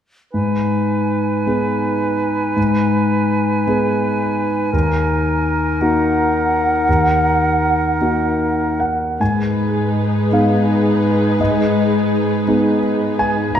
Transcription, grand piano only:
0.34 G#2
1.46 B3 D#4 G#4
2.56 G#2
3.67 B3 D#4 G#4
4.73 D#2
5.81 A#3 D#4 F#4
6.89 D#2
8.01 A#3 D#4 F#4
8.80 F#5
9.20 G#2 G#5
10.32 B3 D#4 G#4 F5
11.40 G#2 D#5
12.47 B3 D#4 G#4
13.19 G#5
13.55 A#5

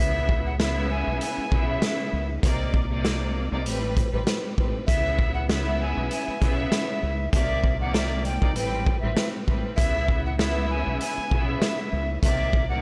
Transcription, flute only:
Already playing: E5
0.46 F#5
0.59 E5
0.91 G#5
1.22 G#5
1.68 E5
4.87 E5
5.34 F#5
5.50 E5
5.81 G#5
6.12 G#5
6.58 E5
7.33 E5
7.81 F#5
7.97 E5
8.25 G5
8.57 G5
9.00 E5
9.76 E5
10.26 F#5
10.39 E5
10.70 G#5
11.01 G#5
11.48 E5
12.23 E5
12.69 F#5

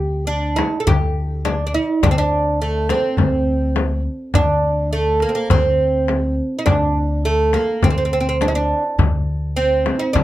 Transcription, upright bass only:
Already playing: D2
0.87 D2
2.03 D2
3.18 D2
4.34 D2
5.51 D2
6.67 D2
7.83 D2
8.98 D2
10.15 D2

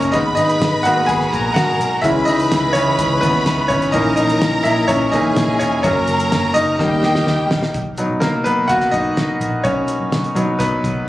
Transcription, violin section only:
0.14 B4 B5
1.32 A#4 A#5
2.03 B4 B5
3.94 A#4 A#5
5.13 G#4 G#5
5.84 A#4 A#5
6.80 G4 G5

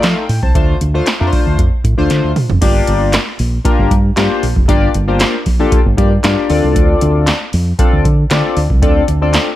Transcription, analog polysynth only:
Already playing: A3 D#4 F4
0.03 A4 F5
0.17 G5
0.43 C5 A5
0.55 A3 D4 F4 C5
0.94 A3 D4 F4 C5
1.20 A3 D4 F4 A#4
1.27 C5
1.98 A3 D4 F4 C5
2.61 A#3 D4 F4 G4 D5
3.65 A#3 D4 F4 G4 A#4
4.16 A#3 D4 F4 G4 C5
4.68 A#3 D4 F4 G4 D5
5.08 A#3 D4 F4 G4 C5
5.59 A#3 D4 F4 G4 A4
5.97 A#3 D4 F4 G4 D5
6.24 A#3 D4 F4 G4 D5
6.49 C4 D4 F4 A4 D5
7.79 C4 D4 F4 A4 D5
8.30 C4 D4 F4 A4 D5
8.82 C4 D4 F4 A4 D5
9.22 C4 D4 F4 A4 D5

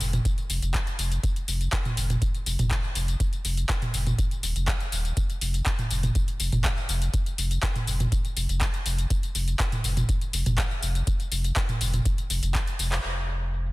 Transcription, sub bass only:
0.00 F1
0.50 F1
0.62 F1
0.99 F1
1.48 F1
1.97 F1
2.46 F1
2.59 F1
2.96 F1
3.45 F1
3.94 F1
4.43 D#1
4.56 F1
4.92 D#1
5.41 F1
5.91 F1
6.40 F1
6.53 F1
6.89 F1
7.38 F1
7.87 F1
8.37 F1
8.49 F1
8.86 F1
9.35 F1
9.84 F1
10.34 F1
10.46 F1
10.83 F1
11.32 F1
11.81 F1
12.30 F1
12.43 F1
12.79 F1
13.04 F1

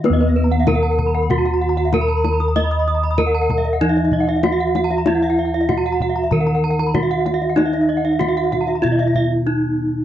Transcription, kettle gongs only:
Already playing: D#3
0.05 B4
0.10 D#2
0.68 E4
1.94 E4
2.56 D#5
3.19 E4
3.81 E3
4.44 E4
5.07 E4
6.33 D#3
6.95 E4
7.58 D#4
8.84 B2
9.47 E4

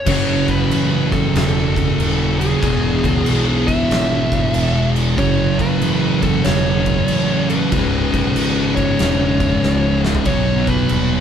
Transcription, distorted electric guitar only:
0.06 F#2 C#3 F#3
2.61 E2 B2 E3
5.18 F#2 C#3 F#3
7.72 C#2 G#2 C#3
10.27 B2 F#3 B3

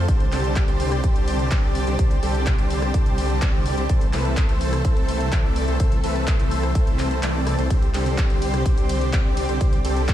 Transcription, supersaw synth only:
0.08 D3 G3 C4 G4 C5
0.32 D3 G3 C4 G4 A4
0.68 D3 G3 C4 G4 C5
1.04 D3 G3 C4 G4 C5
1.51 D3 G3 C4 G4 D5
1.87 D3 G3 C4 G4 C5
1.99 D3 G3 C4 G4 C5
2.23 D3 G3 C4 G4 A4
2.58 D3 G3 C4 G4 C5
2.94 D3 G3 C4 G4 C5
3.42 D3 G3 C4 G4 D5
3.77 D3 G3 C4 G4 C5
3.89 E3 A3 C4 A4 C5
4.13 E3 A3 C4 A4 B4
4.49 E3 A3 C4 A4 C5
4.85 E3 A3 C4 A4 C5
5.32 E3 A3 C4 A4 D5
5.68 E3 A3 C4 A4 C5
5.80 E3 A3 C4 A4 C5
6.04 E3 A3 C4 A4 B4
6.39 E3 A3 C4 A4 C5
6.75 E3 A3 C4 A4 C5
7.23 E3 A3 C4 A4 D5
7.58 E3 A3 C4 A4 C5
7.71 D3 G3 C4 G4 C5
7.94 D3 G3 C4 G4 A4
8.30 D3 G3 C4 G4 C5
8.66 D3 G3 C4 G4 C5
9.13 D3 G3 C4 G4 D5
9.49 D3 G3 C4 G4 C5
9.61 D3 G3 C4 G4 C5
9.85 D3 G3 C4 G4 A4

